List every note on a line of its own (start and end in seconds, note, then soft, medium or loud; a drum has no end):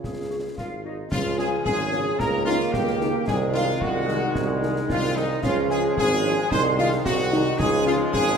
0.00 0.49 C#2 medium
0.00 0.54 C#3 medium
0.00 0.84 F4 medium
0.04 0.55 G#4 medium
0.04 concert bass drum medium
0.04 snare medium
0.30 0.40 F4 soft
0.30 0.40 G#4 soft
0.30 0.40 C#5 soft
0.57 1.03 G#1 medium
0.57 0.70 F4 medium
0.57 0.83 F4 medium
0.57 0.70 A#4 medium
0.57 0.83 F5 medium
0.57 concert bass drum medium
0.57 snare soft
0.84 0.97 D#4 medium
0.84 1.10 D#4 medium
0.84 0.94 F4 soft
0.84 1.10 F4 medium
0.84 0.94 G#4 soft
0.84 0.94 C#5 soft
0.84 1.10 D#5 medium
1.11 1.57 C#2 loud
1.11 2.16 F3 medium
1.11 2.16 G#3 medium
1.11 1.37 F4 loud
1.11 1.25 F4 medium
1.11 1.17 F5 loud
1.11 concert bass drum medium
1.11 snare medium
1.11 crash medium
1.38 1.48 C#3 medium
1.38 1.48 C#4 medium
1.38 1.48 F4 medium
1.38 1.51 G#4 medium
1.38 1.51 G#4 loud
1.38 1.64 G#5 loud
1.38 snare medium
1.65 2.10 G#1 medium
1.65 2.21 C#4 medium
1.65 2.15 G#4 loud
1.65 2.16 G#4 loud
1.65 2.16 G#5 loud
1.65 concert bass drum medium
1.92 2.02 C#3 medium
1.92 2.02 C#4 medium
1.92 2.02 F4 medium
1.92 snare medium
2.19 2.65 C#2 loud
2.19 3.26 D#3 medium
2.19 3.29 A#3 loud
2.19 3.28 A#3 medium
2.19 2.46 A#4 loud
2.19 2.45 A#5 loud
2.19 concert bass drum medium
2.19 snare medium
2.46 2.56 C#3 medium
2.46 2.56 A#3 medium
2.46 2.56 D#4 medium
2.46 2.71 F4 loud
2.46 2.59 F4 medium
2.46 2.72 F5 loud
2.46 snare medium
2.60 snare medium
2.73 3.15 C#2 medium
2.73 3.24 G4 medium
2.73 3.27 G4 loud
2.73 3.24 G5 medium
2.73 concert bass drum medium
2.73 snare medium
2.87 snare medium
3.00 3.10 C#3 medium
3.00 3.10 A#3 medium
3.00 3.10 D#4 medium
3.00 snare medium
3.27 3.73 C2 loud
3.27 5.39 D#3 loud
3.27 5.42 G#3 loud
3.27 3.82 C4 loud
3.27 3.39 G#4 loud
3.27 3.53 G#4 loud
3.27 3.34 G#5 loud
3.27 concert bass drum medium
3.27 snare medium
3.27 crash soft
3.54 3.64 D#3 medium
3.54 3.64 G#3 medium
3.54 3.64 D#4 medium
3.54 3.79 F4 loud
3.54 3.82 F4 medium
3.54 3.80 F5 loud
3.54 snare medium
3.81 4.27 C2 medium
3.81 4.10 F4 loud
3.81 4.62 F#4 loud
3.81 4.59 F#4 medium
3.81 4.59 F#5 medium
3.81 concert bass drum medium
4.08 4.18 D#3 medium
4.08 4.18 G#3 medium
4.08 5.43 D#4 medium
4.08 4.18 D#4 medium
4.08 snare medium
4.35 4.81 C2 loud
4.35 concert bass drum medium
4.35 snare medium
4.62 4.72 D#3 medium
4.62 4.72 G#3 medium
4.62 4.72 D#4 medium
4.62 snare medium
4.76 snare medium
4.89 5.35 C2 medium
4.89 5.14 F4 loud
4.89 5.15 F4 loud
4.89 4.96 F5 loud
4.89 concert bass drum medium
4.89 snare medium
5.03 snare medium
5.16 5.27 D#3 medium
5.16 5.26 G#3 medium
5.16 5.43 D#4 loud
5.16 5.26 D#4 medium
5.16 5.42 D#4 medium
5.16 5.42 D#5 medium
5.16 snare medium
5.43 5.89 C#2 loud
5.43 6.51 F3 medium
5.43 7.55 G#3 loud
5.43 5.94 C#4 loud
5.43 5.56 F4 loud
5.43 5.71 F4 loud
5.43 5.70 F5 loud
5.43 concert bass drum medium
5.43 snare medium
5.43 crash soft
5.69 5.80 F3 medium
5.69 5.80 G#3 medium
5.69 5.80 C#4 medium
5.69 5.96 G#4 loud
5.69 5.83 G#4 loud
5.69 5.75 G#5 loud
5.69 snare medium
5.97 6.42 G#1 loud
5.97 6.22 C4 medium
5.97 6.47 G#4 loud
5.97 6.48 G#4 loud
5.97 6.47 G#5 loud
5.97 concert bass drum medium
6.24 6.34 F3 medium
6.24 6.34 G#3 medium
6.24 6.36 C#4 loud
6.24 6.34 C#4 medium
6.24 snare medium
6.51 6.96 C2 loud
6.51 7.55 D#3 medium
6.51 7.01 D#4 loud
6.51 6.63 C5 loud
6.51 6.64 C5 loud
6.51 6.78 C6 loud
6.51 concert bass drum medium
6.51 snare medium
6.78 6.88 D#3 medium
6.78 6.88 G#3 medium
6.78 6.88 D#4 medium
6.78 6.90 F4 loud
6.78 6.91 F4 loud
6.78 7.03 F5 loud
6.78 snare medium
6.92 snare medium
7.05 7.50 C2 loud
7.05 7.18 C4 loud
7.05 7.55 F#4 loud
7.05 7.55 F#5 loud
7.05 concert bass drum medium
7.05 snare medium
7.19 snare medium
7.32 7.42 D#3 medium
7.32 7.42 G#3 medium
7.32 7.42 D#4 medium
7.32 8.14 D#4 loud
7.32 snare medium
7.58 8.04 C#2 loud
7.58 8.38 F3 loud
7.58 8.38 G#3 loud
7.58 7.86 G#4 loud
7.58 7.71 G#4 loud
7.58 7.86 G#5 loud
7.58 concert bass drum medium
7.58 snare medium
7.58 crash soft
7.86 7.96 F3 medium
7.86 7.96 G#3 medium
7.86 7.96 C#4 medium
7.86 7.98 F4 loud
7.86 8.11 F4 loud
7.86 7.92 F5 loud
7.86 snare medium
8.12 8.38 G#1 loud
8.12 8.38 C#4 medium
8.12 8.38 G#4 loud
8.12 8.38 G#5 loud
8.12 concert bass drum medium